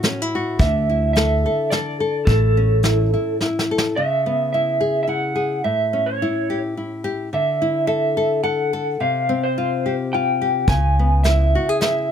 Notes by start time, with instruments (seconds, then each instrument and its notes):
Already playing: nylon-string guitar A2 F#4
0.02 nylon-string guitar C#4, snare, closed hi-hat
0.22 nylon-string guitar E4
0.35 nylon-string guitar F#4
0.59 upright bass D2, nylon-string guitar D3, clean electric guitar E5, kick, closed hi-hat
0.90 nylon-string guitar E4
1.13 nylon-string guitar A4, clean electric guitar E5, snare, closed hi-hat
1.46 nylon-string guitar A4
1.70 nylon-string guitar A4, clean electric guitar D5, snare, closed hi-hat
2.00 nylon-string guitar A4
2.25 upright bass A1, nylon-string guitar A2, clean electric guitar A4, kick, closed hi-hat
2.57 nylon-string guitar C#4
2.83 nylon-string guitar E4, snare, closed hi-hat
3.14 nylon-string guitar E4
3.41 nylon-string guitar E4, snare
3.59 snare
3.71 nylon-string guitar A4
3.78 snare
3.96 nylon-string guitar C#3, clean electric guitar E5
4.26 nylon-string guitar B3
4.53 nylon-string guitar E4, clean electric guitar E5
4.81 nylon-string guitar G#4
5.03 clean electric guitar E5
5.07 nylon-string guitar E4, clean electric guitar F#5
5.36 nylon-string guitar G#4
5.64 nylon-string guitar A2, clean electric guitar E5
5.93 nylon-string guitar C#4
6.06 clean electric guitar C#5
6.22 nylon-string guitar E4
6.50 nylon-string guitar G4
6.77 nylon-string guitar E4
7.04 nylon-string guitar G4
7.33 nylon-string guitar D3, clean electric guitar E5
7.62 nylon-string guitar E4
7.87 nylon-string guitar A4, clean electric guitar E5
8.17 nylon-string guitar A4
8.43 nylon-string guitar A4, clean electric guitar F#5
8.73 nylon-string guitar A4
9.00 nylon-string guitar C3, clean electric guitar F5
9.29 nylon-string guitar C4
9.43 clean electric guitar C5
9.58 nylon-string guitar F4
9.86 nylon-string guitar G4
10.13 nylon-string guitar F4, clean electric guitar G5
10.42 nylon-string guitar G4
10.67 upright bass C#2, nylon-string guitar C#3, clean electric guitar G#5, kick, closed hi-hat
10.99 nylon-string guitar B3
11.24 clean electric guitar E5, snare, closed hi-hat
11.29 nylon-string guitar E4
11.55 nylon-string guitar F#4
11.69 nylon-string guitar G#4
11.81 nylon-string guitar E4, clean electric guitar E5, snare, closed hi-hat